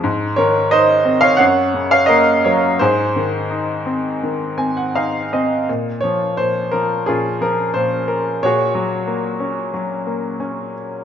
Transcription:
0.04 G#2
0.36 D#3 A#4 C#5
0.71 D#4 C5 D#5
1.05 C4
1.21 C#5 F5
1.37 F#2 C#5 F#5
1.74 C#3
1.91 C#5 F5
2.06 A#3 A#4 D#5
2.44 F#3 A#4 C#5
2.79 G#2 G#4 C5
3.16 D#3
3.51 D#4
3.86 C4
4.23 D#3
4.58 C4 G#5
4.77 F#5
4.95 D#4 F5
5.33 C4 D#5
5.69 A#2
6.01 F3 C#5
6.37 A#2 C5
6.72 F3 A#4
7.06 A#2 C#4 F4 G#4
7.41 F3 A#4
7.74 A#2 C5
8.08 A#4
8.43 A#2 F#4 G#4 C#5
8.75 F#3
9.07 A#3
9.40 C#4
9.74 F#3
10.07 A#3
10.40 C#4

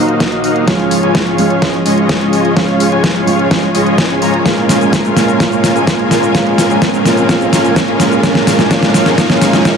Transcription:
Already playing: D#2 F#3 A#3 D#4 F#4 C5 D#5 F5, riser
0.08 closed hi-hat
0.20 kick, snare, closed hi-hat
0.32 D#2 A#3 D#4 F#4 D#5 F5, closed hi-hat
0.44 open hi-hat
0.56 closed hi-hat
0.66 C#2 F3 G#3 C#4 F4 G#4 C#5 F5 G#5, kick, snare, closed hi-hat
0.79 closed hi-hat
0.91 open hi-hat
1.03 C#2 G#3 C#4 F4 C#5 G#5, closed hi-hat
1.15 kick, snare, closed hi-hat
1.27 C#2 G#3 C#4 F4 C#5 F5, closed hi-hat
1.37 F3 G#3 C#4 F4, open hi-hat
1.50 closed hi-hat
1.62 C#2 G#3 C#4 F4 C#5 D#5, kick, snare, closed hi-hat
1.74 closed hi-hat
1.86 C#2 G#3 C#4 F4 C#5 D#5, open hi-hat
2.09 kick, snare, closed hi-hat
2.21 C#2 G#3 C#4 F4 C#5 D#5, closed hi-hat
2.33 open hi-hat
2.45 closed hi-hat
2.55 C#2 F3 G#3 C#4 F4 C#5 F5, kick, snare, closed hi-hat
2.68 closed hi-hat
2.80 open hi-hat
2.92 C#2 G#3 C#4 F4 C#5 G#5, closed hi-hat
3.04 kick, snare, closed hi-hat
3.15 C#2 G#3 C#4 F4 C#5 F5, closed hi-hat
3.26 F3 G#3 C#4 F4, open hi-hat
3.39 closed hi-hat
3.51 G#3 C#4 F4 C#5 D#5, kick, snare, closed hi-hat
3.63 closed hi-hat
3.75 C#2 G#3 C#4 F4 C#5 D#5, open hi-hat
3.87 closed hi-hat
3.98 kick, snare, closed hi-hat
4.10 C#2 G#3 C#4 F4 C#5 G#5, closed hi-hat
4.22 A#1 G#3 C#4 F4 C#5 A#5, open hi-hat
4.34 closed hi-hat
4.44 A#2 G#3 A#3 C#4 F4 A#4 F5, kick, snare, closed hi-hat, cabasa
4.58 closed hi-hat
4.69 snare, open hi-hat, cabasa
4.81 A#1 G#3 C#4 F4 A#4 G#5, closed hi-hat, cabasa
4.93 kick, snare, closed hi-hat, cabasa
5.04 A#1 G#3 C#4 F4 A#4 F5, closed hi-hat, cabasa
5.15 A#2 G#3 A#3 C#4 F4, snare, open hi-hat, cabasa
5.28 closed hi-hat, cabasa
5.39 A#2 G#3 A#3 C#4 F4 A#4 F5, kick, snare, closed hi-hat, cabasa
5.52 closed hi-hat, cabasa
5.64 snare, open hi-hat, cabasa
5.75 A#1 G#3 C#4 F4 A#4 G#5, closed hi-hat, cabasa
5.87 kick, snare, closed hi-hat, cabasa
5.99 A#1 G#3 C#4 F4 A#4 F5, closed hi-hat
6.10 A#2 G#3 A#3 C#4 F4, snare, open hi-hat, cabasa
6.23 closed hi-hat, cabasa
6.33 A#2 G#3 A#3 C#4 F4 A#4 F5, kick, snare, closed hi-hat, cabasa
6.46 closed hi-hat
6.58 snare, open hi-hat, cabasa
6.70 A#1 G#3 C#4 F4 A#4 G#5, closed hi-hat, cabasa
6.82 kick, snare, closed hi-hat, cabasa
6.93 A#1 G#3 C#4 F4 A#4 F5, closed hi-hat, cabasa
7.04 A#2 G#3 A#3 C#4 F4, snare, open hi-hat, cabasa
7.17 closed hi-hat, cabasa
7.28 A#2 G#3 A#3 C#4 F4 A#4 F5, kick, snare, closed hi-hat, cabasa
7.41 closed hi-hat, cabasa
7.53 snare, open hi-hat, cabasa
7.64 A#1 G#3 C#4 F4 A#4 G#5, closed hi-hat, cabasa
7.76 kick, snare, closed hi-hat, cabasa
7.88 A#1 G#3 C#4 F4 A#4 F5, closed hi-hat
7.99 A#2 G#3 A#3 C#4 F4, snare, open hi-hat, cabasa
8.12 closed hi-hat, cabasa
8.22 A#2 F#3 G#3 A#3 C#4 F4 A#4 C#5 F5, kick, snare, closed hi-hat, cabasa
8.35 snare, closed hi-hat
8.47 snare, open hi-hat, cabasa
8.59 G#3 C#4 F4 A#4 G#5, snare, closed hi-hat, cabasa
8.69 A#2 G#3 A#3 C#4 F4 A#4 F5, kick, snare, closed hi-hat, cabasa
8.83 snare, closed hi-hat, cabasa
8.94 snare, open hi-hat, cabasa
9.06 G#3 C#4 F4 A#4 G#5, snare, closed hi-hat, cabasa
9.17 A#2 G#3 A#3 C#4 F4 A#4 F5, kick, snare, closed hi-hat, cabasa
9.30 snare, closed hi-hat, cabasa
9.42 snare, open hi-hat, cabasa
9.53 G#3 C#4 F4 A#4 G#5, snare, closed hi-hat, cabasa
9.64 A#2 G#3 A#3 C#4 F4 A#4 F5, kick, snare, closed hi-hat, cabasa

